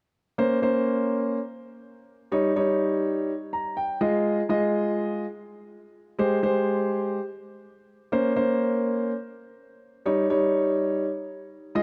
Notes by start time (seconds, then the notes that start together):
0.38 A#3 C#4 C5
0.62 A#3 C#4 C5
2.32 G3 D#4 C#5
2.56 G3 D#4 C#5
3.53 A#5
3.77 G5
4.01 G#3 F4 D#5
4.49 G#3 F4 D#5
6.19 G#3 G4 C5
6.43 G#3 G4 C5
8.12 A#3 C#4 C5
8.36 A#3 C#4 C5
10.06 G3 D#4 C#5
10.30 G3 D#4 C#5
11.75 G#3 F4 D#5